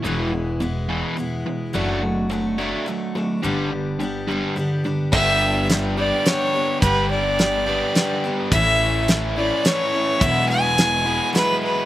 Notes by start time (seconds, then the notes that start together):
0.04 E1 E2 B2 E3 G#3 B3 E4
0.33 E2 B2
0.60 E2 B2 E3 G#3 B3 E4
0.89 E2 B2 E3
1.17 E2 B2 E3 G#3 B3 E4
1.46 E2 B2
1.73 F#1 F#3 A3 D4 F#4
2.02 F#3 A3
2.30 F#3 A3 D4 F#4
2.58 F#3 A3 D4 F#4
2.86 F#3 A3 D4 F#4
3.15 F#3 A3 D4 F#4
3.43 G1 G2 D3 G3 B3 D4 G4
3.72 G2 D3
4.00 G2 D3 G3 B3 D4 G4
4.27 G2 D3 B3 D4 G4
4.32 G3
4.56 G2 D3 G3 B3 D4 G4
4.84 G2 D3 G3 B3 D4 G4
5.12 G1 G2 D3 G3 B3 D4 G4 E5, kick, crash
5.70 G3 B3 D4 G4, snare, closed hi-hat
5.97 G2 D3 G3 B3 D4 G4 D5
6.26 G3 B3 D4 G4 C#5, snare, closed hi-hat
6.54 G3 B3 D4 G4
6.82 G1 G2 D3 G3 B3 D4 G4 B4, kick, closed hi-hat
7.11 D5
7.39 G3 B3 D4 G4, snare, closed hi-hat
7.66 G2 D3 G3 B3 D4 G4
7.95 G3 B3 D4 G4, snare, closed hi-hat
8.24 G3 B3 D4 G4
8.52 A1 A2 E3 A3 C#4 E4 E5, kick, closed hi-hat
9.08 E3 A3 C#4 E4, snare, closed hi-hat
9.37 A2 E3 A3 C#4 E4 D5
9.65 E3 A3 C#4 E4 C#5, snare, closed hi-hat
9.93 A3 C#4 E4
10.20 E1 E2 B2 E3 F#3 G#3 B3 E4 E5, kick, closed hi-hat
10.49 G#5
10.78 F#3 G#3 B3 E4, snare, closed hi-hat
11.06 E2 B2 E3 F#3 G#3 B3 E4
11.33 F#3 G#3 B3 E4 B4, snare, closed hi-hat
11.64 B4